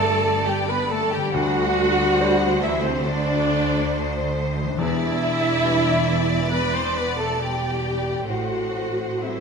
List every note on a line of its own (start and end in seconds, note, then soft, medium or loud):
0.00 1.30 G1 medium
0.00 1.29 G2 medium
0.00 1.31 G2 medium
0.00 1.19 G3 medium
0.00 1.30 G3 medium
0.00 0.48 A3 loud
0.00 1.24 D4 medium
0.00 1.30 D4 medium
0.00 0.45 A4 loud
0.00 1.30 B4 medium
0.00 1.35 B4 medium
0.00 1.30 D5 medium
0.00 0.47 A5 medium
0.00 0.47 A5 loud
0.47 0.69 G3 medium
0.47 0.69 G4 medium
0.47 0.69 G5 medium
0.69 0.91 B3 medium
0.69 0.91 B4 medium
0.69 0.91 B5 medium
0.90 1.13 A3 medium
0.90 1.11 A4 medium
0.90 1.12 A5 medium
1.12 1.33 G3 medium
1.12 1.34 G4 medium
1.12 1.33 G5 medium
1.12 1.34 G5 medium
1.16 4.74 D3 medium
1.20 4.64 G3 medium
1.25 4.69 D4 medium
1.30 2.63 F#4 loud
1.30 4.80 C5 medium
1.30 2.60 F#5 loud
1.30 2.60 F#5 medium
1.34 2.17 D2 medium
1.34 4.75 D2 medium
1.34 2.63 G3 loud
1.34 4.76 C5 medium
2.20 4.75 G3 medium
2.20 4.75 D4 medium
2.20 4.75 C5 medium
2.61 2.84 E3 medium
2.61 2.84 E4 medium
2.61 2.84 E5 medium
2.83 3.06 C3 medium
2.83 3.06 C4 medium
2.83 3.05 C5 medium
2.83 3.06 C5 medium
3.05 4.37 D3 medium
3.05 4.36 D4 loud
3.05 4.34 D5 medium
3.05 4.37 D5 medium
4.61 8.23 E3 medium
4.65 8.14 G3 medium
4.70 8.27 D4 medium
4.75 5.61 E2 medium
4.75 8.29 B4 medium
4.75 6.48 E5 loud
4.79 8.24 E1 medium
4.79 8.24 E2 medium
4.79 6.49 E3 medium
4.79 6.48 E4 loud
4.79 8.28 D5 medium
4.79 6.48 E5 medium
5.64 8.24 G3 soft
5.64 8.24 D4 soft
5.64 8.25 B4 soft
6.52 6.75 B3 medium
6.52 6.74 B4 medium
6.52 6.74 B5 medium
6.73 6.96 C4 medium
6.73 6.96 C5 medium
6.73 6.96 C6 medium
6.95 7.18 B3 medium
6.95 7.18 B4 medium
6.95 7.17 B5 medium
6.95 7.18 B5 medium
7.18 7.40 A3 medium
7.18 7.40 A4 medium
7.18 7.39 A5 medium
7.40 8.28 G3 medium
7.40 8.29 G4 medium
7.40 8.28 G5 medium
8.10 9.40 A2 soft
8.15 9.40 G3 soft
8.19 9.40 C4 soft
8.23 9.40 A4 soft
8.27 9.40 A1 medium
8.27 9.40 A2 medium
8.27 9.18 A2 soft
8.27 9.19 F#4 medium
8.27 9.21 F#4 medium
8.27 9.40 C5 medium
8.27 9.19 F#5 medium
8.27 9.21 F#5 medium
9.20 9.40 E3 soft
9.20 9.40 G3 soft
9.20 9.40 C4 soft
9.20 9.40 E4 medium
9.20 9.40 A4 soft
9.20 9.40 E5 soft
9.20 9.40 E5 medium